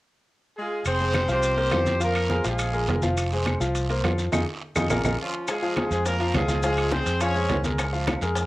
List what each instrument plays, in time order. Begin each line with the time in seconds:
0.58 horn section G#3 F4 G#4
0.85 fingered electric bass F1, horn section C4 G#4 C5, high conga, high timbale, long guiro, claves, maracas
1.00 grand piano G#3 G#4 C5, high conga, maracas
1.14 high conga, high timbale, low timbale, short guiro, claves, maracas
1.28 fingered electric bass C2, grand piano F3 F4 F5, horn section C4 G4 C5, high conga, short guiro, maracas
1.43 high conga, high timbale, long guiro, maracas
1.57 grand piano A#3 A#4 C5, high conga, high timbale, maracas
1.71 fingered electric bass F2, grand piano F3 F4 F5, high conga, high timbale, low timbale, short guiro, claves, maracas
1.86 high conga, short guiro, maracas
2.00 grand piano F3 F4 F5, horn section A#3 F4 A#4, high conga, high timbale, long guiro, maracas
2.15 high conga, high timbale, claves, maracas
2.30 grand piano G#3 G#4 C5, high conga, low timbale, short guiro, maracas
2.44 fingered electric bass A#1, grand piano F3 F4 F5, horn section G#3 F4 G#4, high conga, high timbale, short guiro, maracas
2.59 high conga, high timbale, long guiro, claves, maracas
2.73 grand piano G#3 G#4 A#4, high conga, maracas
2.88 fingered electric bass F1, grand piano G#3 G#4 A#4, high conga, high timbale, low timbale, short guiro, maracas
3.02 grand piano F3 F4 F5, high conga, short guiro, maracas
3.17 high conga, high timbale, long guiro, claves, maracas
3.32 grand piano G#3 G#4 C5, high conga, maracas
3.46 high conga, high timbale, low timbale, short guiro, claves, maracas
3.60 fingered electric bass C2, grand piano F3 F4 F5, high conga, short guiro, maracas
3.75 high conga, high timbale, long guiro, maracas
3.89 grand piano A#3 A#4 C5, high conga, high timbale, maracas
4.03 fingered electric bass F2, grand piano F3 F4 F5, high conga, high timbale, low timbale, short guiro, claves, maracas
4.18 short guiro, maracas
4.32 fingered electric bass F2, grand piano D#4 F4 G#4, high conga, high timbale, long guiro, claves, maracas
4.76 fingered electric bass F2, grand piano D#4 F4 G#4, high conga, high timbale, long guiro, claves, maracas
4.90 fingered electric bass A#1, grand piano F4 G#4 A#4, high conga, high timbale, long guiro, claves, maracas
5.04 fingered electric bass A#1, grand piano F4 G#4 A#4, high conga, high timbale, long guiro, claves, maracas
5.21 horn section F3 C#4 F4
5.47 horn section G#3 F4 G#4, high bongo, high conga, high timbale, long guiro, claves, maracas
5.62 grand piano F3 F4 F5, high bongo, high conga, maracas
5.76 high bongo, high conga, high timbale, low timbale, short guiro, claves, maracas
5.91 fingered electric bass F2, grand piano G#3 G#4 C5, high bongo, high conga, short guiro, maracas
6.05 horn section A#3 F4 A#4, high bongo, high conga, high timbale, long guiro, maracas
6.19 grand piano F3 F4 F5, high bongo, high conga, high timbale, maracas
6.34 fingered electric bass C#2, horn section G#3 F4 G#4, high bongo, low bongo, high conga, high timbale, low timbale, short guiro, claves, maracas
6.48 grand piano F3 F4 F5, high conga, short guiro, maracas
6.63 grand piano F3 F4 F5, horn section G#3 F4 G#4, high bongo, high conga, high timbale, long guiro, maracas
6.77 high bongo, high conga, high timbale, claves, maracas
6.92 grand piano G#3 G#4 C5, horn section C4 G#4 C5, high bongo, high conga, low timbale, short guiro, maracas
7.06 fingered electric bass F2, high bongo, high conga, high timbale, short guiro, maracas
7.20 grand piano F3 F4 F5, horn section C#4 G#4 C#5, high bongo, high conga, high timbale, long guiro, claves, maracas
7.35 grand piano G#3 G#4 C5, high bongo, high conga, maracas
7.49 fingered electric bass C#2, high bongo, low bongo, high conga, high timbale, low timbale, short guiro, maracas
7.64 grand piano G#3 G#4 A#4, high conga, short guiro, maracas
7.78 high bongo, high conga, high timbale, long guiro, claves, maracas
7.93 grand piano F3 F4 F5, high bongo, high conga, maracas
8.07 high bongo, high conga, high timbale, low timbale, short guiro, claves, maracas
8.21 fingered electric bass F2, grand piano G#3 G#4 A#4, high bongo, high conga, short guiro, maracas
8.35 high bongo, high conga, high timbale, long guiro, maracas